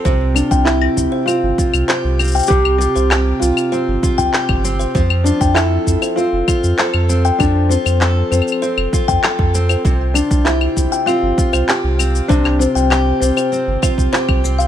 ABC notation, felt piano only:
X:1
M:4/4
L:1/8
Q:1/4=98
K:C
V:1 name="Felt piano"
z D E2 F4 | G G2 F4 z | z D E2 F4 | D C2 C4 z |
z D E2 F4 | D C2 C4 z |]